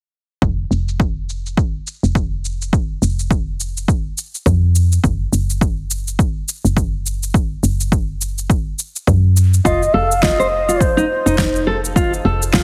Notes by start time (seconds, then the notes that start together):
0.42 F1, kick, shaker
0.71 F1, shaker
0.89 shaker
1.00 kick, shaker
1.29 shaker
1.46 shaker
1.57 kick, shaker
1.87 shaker
2.03 F1, shaker
2.15 kick, shaker
2.45 shaker
2.62 shaker
2.73 kick, shaker
3.02 F1, shaker
3.19 shaker
3.31 kick, shaker
3.60 shaker
3.77 shaker
3.88 kick, shaker
4.18 shaker
4.35 shaker
4.46 F2, kick, shaker
4.75 shaker
4.92 shaker
5.04 F#1, kick, shaker
5.33 F#1, shaker
5.50 shaker
5.61 kick, shaker
5.91 shaker
6.08 shaker
6.19 kick, shaker
6.49 shaker
6.65 F#1, shaker
6.77 kick, shaker
7.06 shaker
7.23 shaker
7.34 kick, shaker
7.63 F#1, shaker
7.80 shaker
7.92 kick, shaker
8.21 shaker
8.38 shaker
8.50 kick, shaker
8.79 shaker
8.96 shaker
9.07 F#2, kick, shaker
9.37 shaker
9.54 shaker
9.65 F1 F4 D#5, kick, shaker
9.83 shaker
9.94 F1 A4 F5
10.12 shaker
10.22 F4 D#5, kick, snare, shaker
10.40 C5, shaker
10.68 F4, shaker
10.81 C5, kick, shaker
10.97 D#4, shaker
11.26 F1 D#4, shaker
11.38 D#4, kick, snare, shaker
11.56 shaker
11.67 A4
11.85 shaker
11.96 F4, kick, shaker
12.14 shaker
12.25 F1 A4
12.42 shaker
12.53 F4, kick, snare, shaker